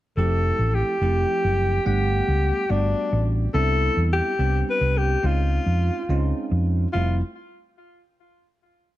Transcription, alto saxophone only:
0.17 A4
0.74 G4
1.87 G4
2.70 D4
3.54 A4
4.13 G4
4.69 B4
4.97 G4
5.26 F4
6.93 F4

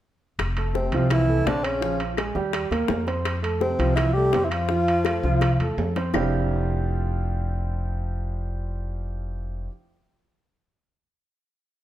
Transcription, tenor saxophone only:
0.75 C4
1.11 E4
1.47 D4
1.64 C#4
3.61 C4
3.96 E4
4.14 G4
4.45 E4
4.51 F4

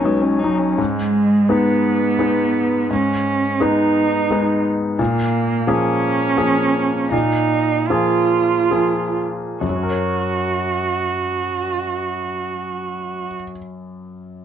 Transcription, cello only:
0.06 G#3
0.43 F#3
0.80 G#3
1.51 B3
2.93 C#4
3.63 D#4
5.01 A#3
5.69 C#4
7.12 D#4
7.87 F4
9.63 F#4

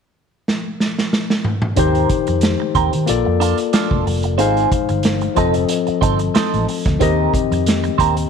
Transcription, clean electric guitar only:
1.77 C4 G4 A#4
2.28 muted clean electric guitar stroke
2.60 muted clean electric guitar stroke
2.75 C4 G4 A#4
2.93 muted clean electric guitar stroke
3.08 muted clean electric guitar stroke
3.25 muted clean electric guitar stroke
3.40 D4 F4 A4
3.58 muted clean electric guitar stroke
3.73 D4 F4 A4
4.06 muted clean electric guitar stroke
4.24 muted clean electric guitar stroke
4.38 C4 F4 G#4
4.89 muted clean electric guitar stroke
5.22 muted clean electric guitar stroke
5.37 C4 D#4 A4
5.55 muted clean electric guitar stroke
5.69 muted clean electric guitar stroke
5.87 muted clean electric guitar stroke
6.01 C4 D#4 A4
6.20 muted clean electric guitar stroke
6.35 C4 D#4 A4
6.86 muted clean electric guitar stroke
7.00 C4 G4 A#4
7.52 muted clean electric guitar stroke
7.84 muted clean electric guitar stroke
7.98 C4 G4 A#4
8.16 muted clean electric guitar stroke

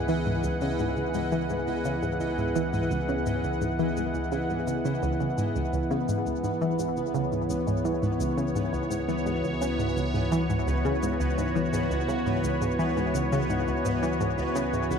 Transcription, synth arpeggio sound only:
0.09 E3
0.26 G#2
0.44 C#2
0.62 C#3
0.80 G#2
0.97 C#2
1.15 G#2
1.32 E3
1.50 G#2
1.68 C#2
1.85 C#3
2.03 G#2
2.20 C#2
2.38 G#2
2.56 E3
2.73 G#2
2.91 C#2
3.09 C#3
3.26 G#2
3.44 C#2
3.61 G#2
3.79 E3
3.97 G#2
4.14 C#2
4.32 C#3
4.50 G#2
4.67 C#3
4.85 C#3
5.03 C#2
5.20 C#3
5.38 G#2
5.56 C#2
5.73 C#2
5.91 C#3
6.08 G#2
6.26 C#2
6.44 G#2
6.61 E3
6.79 G#2
6.97 C#2
7.14 C#3
7.32 G#2
7.50 C#2
7.67 G#2
7.85 E3
8.02 G#2
8.20 C#2
8.38 C#3
8.55 G#2
8.73 C#2
8.90 G#2
9.08 E3
9.26 G#2
9.44 C#2
9.61 C#3
9.79 G#2
9.97 C#2
10.14 G#2
10.32 E3
10.50 G#2
10.67 C#2
10.85 C#3
11.03 G#2
11.20 C#2
11.38 G#2
11.55 E3
11.73 G#2
11.91 C#2
12.08 C#3
12.26 G#2
12.44 C#2
12.61 G#2
12.79 E3
12.97 G#2
13.14 C#2
13.32 C#3
13.50 G#2
13.67 C#2
13.85 G#2
14.03 E3
14.21 G#2
14.38 C#2
14.55 C#3
14.73 G#2
14.91 C#2

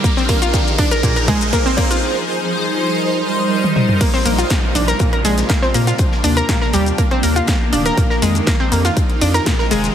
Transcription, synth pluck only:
0.04 A#3
0.17 C4
0.29 A#3
0.42 F4
0.79 D4
0.91 A#4
1.03 A#2
1.16 A#4
1.28 G#3
1.53 A#3
1.66 C4
1.78 A#3
1.91 F4
4.01 A#3 A#4
4.14 C4 C5
4.26 A#3 A#4
4.38 F4 F5
4.75 D4 D5
4.88 A#4 A#5
5.00 A#2 A#3
5.13 A#4 A#5
5.25 G#3 G#4
5.50 A#3 A#4
5.62 C4 C5
5.74 A#3 A#4
5.87 F4 F5
6.24 D4 D5
6.37 A#4 A#5
6.49 A#2 A#3
6.62 A#4 A#5
6.74 G3 G4
6.98 A#3 A#4
7.11 C4 C5
7.23 A#3 A#4
7.36 F4 F5
7.73 D4 D5
7.86 A#4 A#5
7.97 A#2 A#3
8.10 A#4 A#5
8.22 G#3 G#4
8.47 A#3 A#4
8.60 C4 C5
8.72 A#3 A#4
8.85 F4 F5
9.21 D4 D5
9.34 A#4 A#5
9.46 A#2 A#3
9.59 A#4 A#5
9.71 G#3 G#4

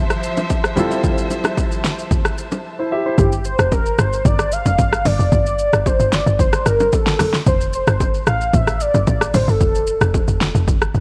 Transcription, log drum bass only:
3.18 G1
3.59 F1
3.98 G1
4.25 G1
4.66 F1
4.79 G1
5.05 G1
5.19 F1
5.32 G1
5.73 G1
6.00 G1
6.26 G1
6.66 G1
7.46 F1
7.87 G1
8.27 A1
8.54 A1
8.94 G1
9.07 A1
9.34 A1
9.48 G1
9.61 F1
10.01 F1
10.28 F1
10.55 F1
10.95 F1

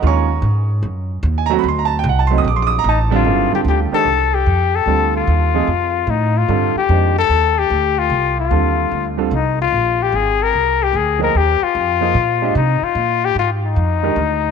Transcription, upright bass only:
0.03 D#2
0.42 G#2
0.83 F#2
1.23 D#2
1.64 D2
2.04 C2
2.44 A#1
2.84 A1
3.24 G1
3.52 muted upright bass stroke
3.65 D2
3.92 muted upright bass stroke
4.05 C2
4.46 F2
4.86 D2
5.27 D#2
5.67 F2
6.07 A2
6.48 G2
6.75 muted upright bass stroke
6.89 F2
7.29 D#2
7.70 D2
8.10 C2
8.51 D#2
8.92 D2
9.31 C2
9.73 A#1
10.12 G#1
10.53 C2
10.93 D2
11.35 D#2
11.61 muted upright bass stroke
11.75 F2
12.14 A#2
12.55 C3
12.82 muted upright bass stroke
12.95 A#2
13.35 G#2
13.76 F2
14.16 D2

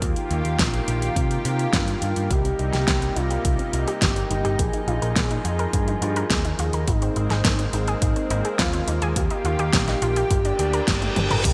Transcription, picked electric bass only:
0.02 D#2
0.31 D#2
0.45 D#2
0.59 A#1
0.88 A#1
1.16 C3
1.45 C3
1.73 G2
2.02 G2
2.17 G2
2.31 C2
2.60 C2
2.74 C2
2.88 C2
3.16 C2
3.45 C2
3.74 C2
4.02 G1
4.31 G1
4.45 G1
4.59 A#1
4.88 A#1
5.02 A#1
5.16 A#2
5.45 F2
5.73 G2
6.02 G2
6.31 D#2
6.59 D#2
6.73 D#2
6.88 G#1
7.16 G#1
7.30 G#1
7.45 G#1
7.73 G#1
8.02 G#1
8.30 G#1
8.59 D#2
8.88 D#2
9.02 D#2
9.16 D#2
9.45 D#2
9.59 D#2
9.73 A#1
10.02 A#1
10.31 G1
10.59 D2
10.88 G1
11.16 G1
11.31 G1
11.45 C2

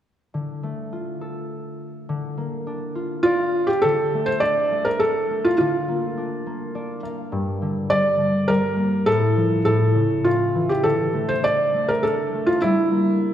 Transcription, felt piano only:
3.23 F4
3.67 G4
3.82 A4
4.26 C5
4.40 D5
4.85 A#4
5.00 A4
5.45 F4
5.58 F4
7.90 D5
8.48 A#4
9.06 A4
9.65 A4
10.24 F4
10.69 G4
10.83 A4
11.29 C5
11.44 D5
11.88 A#4
12.03 A4
12.46 F4
12.62 E4

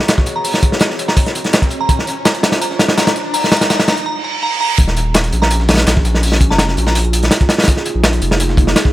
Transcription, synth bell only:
0.36 A#5
1.08 A#5
1.81 A#5
1.89 A#5
2.25 A#5
2.62 A#5
2.98 A#5
3.34 A#5
3.52 A#5
3.70 A#5
3.88 A#5
4.06 A#5
4.24 A#5
4.43 A#5
4.61 A#5
5.42 A#5
6.50 A#5
6.87 A#5

